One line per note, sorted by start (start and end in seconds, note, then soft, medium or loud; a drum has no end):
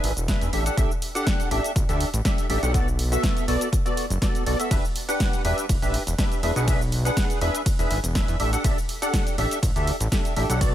0.00 0.12 G#1 loud
0.00 0.12 D4 medium
0.00 0.12 G#4 medium
0.00 0.12 B4 medium
0.00 0.12 E5 medium
0.00 open hi-hat loud
0.17 0.28 E1 medium
0.17 closed hi-hat medium
0.17 shaker medium
0.28 0.37 E1 loud
0.28 0.50 D4 medium
0.28 0.50 G#4 medium
0.28 0.50 B4 medium
0.28 0.50 E5 medium
0.28 kick loud
0.28 snare loud
0.28 closed hi-hat medium
0.28 shaker medium
0.41 0.49 E2 loud
0.41 closed hi-hat soft
0.41 shaker soft
0.53 0.70 A1 medium
0.53 0.64 D4 medium
0.53 0.64 G4 medium
0.53 0.64 A4 medium
0.53 0.64 E5 medium
0.53 open hi-hat loud
0.66 0.76 D4 medium
0.66 0.76 G4 medium
0.66 0.76 A4 medium
0.66 0.76 F#5 medium
0.66 closed hi-hat medium
0.66 shaker medium
0.77 0.86 A1 loud
0.77 0.91 D4 loud
0.77 0.90 G4 medium
0.77 0.91 A4 medium
0.77 0.91 E5 loud
0.77 kick loud
0.77 closed hi-hat medium
0.77 shaker medium
0.91 shaker soft
1.02 open hi-hat loud
1.15 1.48 D4 loud
1.15 1.48 G4 medium
1.15 1.48 A4 medium
1.15 1.48 F#5 loud
1.15 closed hi-hat medium
1.15 shaker medium
1.27 kick loud
1.27 snare loud
1.27 closed hi-hat medium
1.27 shaker medium
1.40 closed hi-hat soft
1.40 shaker soft
1.51 1.60 A1 medium
1.51 1.71 D4 medium
1.51 1.71 G4 medium
1.51 1.71 A4 medium
1.51 1.71 E5 loud
1.51 open hi-hat loud
1.64 closed hi-hat medium
1.64 shaker medium
1.76 1.84 A1 medium
1.76 kick loud
1.76 closed hi-hat medium
1.76 shaker medium
1.89 2.04 D2 loud
1.89 2.08 D4 medium
1.89 2.08 G4 medium
1.89 2.08 A4 medium
1.89 2.08 E5 medium
1.89 closed hi-hat soft
1.89 shaker soft
2.00 open hi-hat loud
2.14 2.21 A1 medium
2.14 closed hi-hat medium
2.14 shaker medium
2.25 2.47 D4 medium
2.25 2.47 G4 medium
2.25 2.47 A4 medium
2.25 2.47 E5 medium
2.25 kick loud
2.25 snare loud
2.25 closed hi-hat medium
2.25 shaker medium
2.38 closed hi-hat soft
2.38 shaker soft
2.50 2.58 A1 loud
2.50 2.61 D4 medium
2.50 2.61 G4 medium
2.50 2.61 A4 medium
2.50 2.61 E5 loud
2.50 open hi-hat loud
2.63 3.17 B1 loud
2.63 2.72 D4 medium
2.63 2.72 G4 medium
2.63 2.72 A4 medium
2.63 2.72 F#5 medium
2.63 closed hi-hat medium
2.63 shaker medium
2.74 2.87 B3 medium
2.74 2.87 F#4 medium
2.74 2.87 A4 medium
2.74 2.87 D5 loud
2.74 kick loud
2.74 closed hi-hat medium
2.74 shaker medium
2.88 shaker soft
2.99 open hi-hat loud
3.12 3.45 B3 loud
3.12 3.45 F#4 medium
3.12 3.45 A4 medium
3.12 3.45 E5 loud
3.12 closed hi-hat medium
3.12 shaker medium
3.23 kick loud
3.23 snare loud
3.23 closed hi-hat medium
3.23 shaker medium
3.37 closed hi-hat soft
3.37 shaker soft
3.48 3.57 B1 medium
3.48 3.68 B3 medium
3.48 3.68 F#4 medium
3.48 3.68 A4 medium
3.48 3.68 D5 loud
3.48 open hi-hat loud
3.61 closed hi-hat medium
3.61 shaker medium
3.73 kick loud
3.73 closed hi-hat medium
3.73 shaker medium
3.85 4.05 B3 medium
3.85 4.05 F#4 medium
3.85 4.05 A4 medium
3.85 4.05 D5 medium
3.85 closed hi-hat soft
3.85 shaker soft
3.97 open hi-hat loud
4.10 4.18 F#1 loud
4.10 closed hi-hat medium
4.10 shaker medium
4.22 4.44 B3 medium
4.22 4.44 F#4 medium
4.22 4.44 A4 medium
4.22 4.44 D5 medium
4.22 kick loud
4.22 snare loud
4.22 closed hi-hat medium
4.22 shaker medium
4.35 closed hi-hat soft
4.35 shaker soft
4.46 4.55 B1 medium
4.46 4.57 B3 medium
4.46 4.57 F#4 medium
4.46 4.57 A4 medium
4.46 4.57 D5 medium
4.46 open hi-hat loud
4.59 4.69 B3 medium
4.59 4.69 F#4 medium
4.59 4.69 A4 medium
4.59 4.69 E5 medium
4.59 closed hi-hat medium
4.59 shaker medium
4.71 4.79 E1 loud
4.71 4.84 D4 medium
4.71 4.84 G4 medium
4.71 4.84 B4 medium
4.71 4.84 E5 loud
4.71 kick loud
4.71 closed hi-hat medium
4.71 ride medium
4.71 shaker medium
4.85 shaker soft
4.96 open hi-hat loud
5.09 5.42 D4 loud
5.09 5.42 G4 medium
5.09 5.42 B4 medium
5.09 5.42 F#5 loud
5.09 closed hi-hat medium
5.09 shaker medium
5.20 kick loud
5.20 snare loud
5.20 closed hi-hat medium
5.20 ride medium
5.20 shaker medium
5.33 closed hi-hat soft
5.33 shaker soft
5.45 5.53 E1 medium
5.45 5.65 D4 loud
5.45 5.65 G4 medium
5.45 5.65 B4 medium
5.45 5.65 E5 loud
5.45 open hi-hat loud
5.58 closed hi-hat soft
5.58 shaker medium
5.69 5.78 E1 medium
5.69 kick loud
5.69 closed hi-hat medium
5.69 ride medium
5.69 shaker medium
5.82 5.98 A1 loud
5.82 6.02 D4 medium
5.82 6.02 G4 medium
5.82 6.02 B4 medium
5.82 6.02 E5 medium
5.82 closed hi-hat soft
5.82 shaker soft
5.94 open hi-hat loud
6.07 6.14 E1 loud
6.07 closed hi-hat medium
6.07 shaker medium
6.18 6.40 D4 medium
6.18 6.40 G4 medium
6.18 6.40 B4 medium
6.18 6.40 E5 medium
6.18 kick loud
6.18 snare loud
6.18 closed hi-hat medium
6.18 ride medium
6.18 shaker medium
6.32 closed hi-hat soft
6.32 shaker soft
6.43 6.52 E1 loud
6.43 6.54 D4 medium
6.43 6.54 G#4 medium
6.43 6.54 B4 medium
6.43 6.54 E5 medium
6.43 open hi-hat loud
6.56 7.10 B1 loud
6.56 6.66 D4 medium
6.56 6.66 G#4 medium
6.56 6.66 B4 medium
6.56 6.66 F#5 medium
6.56 closed hi-hat medium
6.56 shaker medium
6.68 6.81 D4 medium
6.68 6.81 G#4 medium
6.68 6.81 B4 medium
6.68 6.81 E5 loud
6.68 kick loud
6.68 closed hi-hat medium
6.68 ride medium
6.68 shaker medium
6.82 shaker soft
6.92 open hi-hat loud
7.05 7.39 D4 loud
7.05 7.39 G#4 medium
7.05 7.39 B4 medium
7.05 7.39 F#5 loud
7.05 closed hi-hat medium
7.05 shaker medium
7.17 kick loud
7.17 snare loud
7.17 closed hi-hat medium
7.17 ride medium
7.17 shaker medium
7.30 closed hi-hat soft
7.30 shaker soft
7.41 7.50 E1 medium
7.41 7.61 D4 medium
7.41 7.61 G#4 medium
7.41 7.61 B4 medium
7.41 7.62 E5 loud
7.41 open hi-hat loud
7.55 closed hi-hat medium
7.55 shaker medium
7.66 kick loud
7.66 closed hi-hat medium
7.66 ride medium
7.66 shaker medium
7.79 7.87 E1 loud
7.79 7.99 D4 medium
7.79 7.99 G#4 medium
7.79 7.99 B4 medium
7.79 7.99 E5 medium
7.79 closed hi-hat soft
7.79 shaker soft
7.91 7.99 G#1 loud
7.91 open hi-hat loud
8.04 8.15 E1 medium
8.04 closed hi-hat medium
8.04 shaker medium
8.15 8.24 E1 loud
8.15 8.37 D4 medium
8.15 8.37 G#4 medium
8.15 8.37 B4 medium
8.15 8.37 E5 medium
8.15 kick loud
8.15 snare loud
8.15 closed hi-hat medium
8.15 ride medium
8.15 shaker medium
8.28 8.36 E2 loud
8.28 closed hi-hat soft
8.28 shaker soft
8.40 8.56 A1 medium
8.40 8.51 D4 medium
8.40 8.51 G4 medium
8.40 8.51 A4 medium
8.40 8.51 E5 medium
8.40 open hi-hat loud
8.53 8.63 D4 medium
8.53 8.63 G4 medium
8.53 8.63 A4 medium
8.53 8.63 F#5 medium
8.53 closed hi-hat medium
8.53 shaker medium
8.64 8.73 A1 loud
8.64 8.77 D4 loud
8.64 8.77 G4 medium
8.64 8.77 A4 medium
8.64 8.77 E5 loud
8.64 kick loud
8.64 closed hi-hat medium
8.64 ride medium
8.64 shaker medium
8.78 shaker soft
8.89 open hi-hat loud
9.02 9.35 D4 loud
9.02 9.35 G4 medium
9.02 9.35 A4 medium
9.02 9.35 F#5 loud
9.02 closed hi-hat medium
9.02 shaker medium
9.13 kick loud
9.13 snare loud
9.13 closed hi-hat medium
9.13 ride medium
9.13 shaker medium
9.27 closed hi-hat soft
9.27 shaker soft
9.38 9.47 A1 medium
9.38 9.58 D4 medium
9.38 9.58 G4 medium
9.38 9.58 A4 medium
9.38 9.58 E5 loud
9.38 open hi-hat loud
9.51 closed hi-hat medium
9.51 shaker medium
9.63 9.71 A1 medium
9.63 kick loud
9.63 closed hi-hat medium
9.63 ride medium
9.63 shaker medium
9.76 9.91 D2 loud
9.76 9.95 D4 medium
9.76 9.95 G4 medium
9.76 9.95 A4 medium
9.76 9.95 E5 medium
9.76 closed hi-hat soft
9.76 shaker soft
9.87 open hi-hat loud
10.00 10.08 A1 loud
10.00 closed hi-hat medium
10.00 shaker medium
10.12 10.34 D4 medium
10.12 10.34 G4 medium
10.12 10.34 A4 medium
10.12 10.34 E5 medium
10.12 kick loud
10.12 snare loud
10.12 closed hi-hat medium
10.12 ride medium
10.12 shaker medium
10.25 closed hi-hat soft
10.25 shaker soft
10.36 10.45 A1 loud
10.36 10.48 D4 medium
10.36 10.48 G4 medium
10.36 10.48 A4 medium
10.36 10.48 E5 medium
10.36 open hi-hat loud
10.49 10.75 B1 loud
10.49 10.59 D4 medium
10.49 10.59 G4 medium
10.49 10.59 A4 medium
10.49 10.59 F#5 medium
10.49 closed hi-hat medium
10.49 shaker medium
10.61 10.74 B3 loud
10.61 10.74 F#4 medium
10.61 10.74 A4 medium
10.61 10.74 D5 loud
10.61 kick loud
10.61 closed hi-hat medium
10.61 ride medium
10.61 shaker medium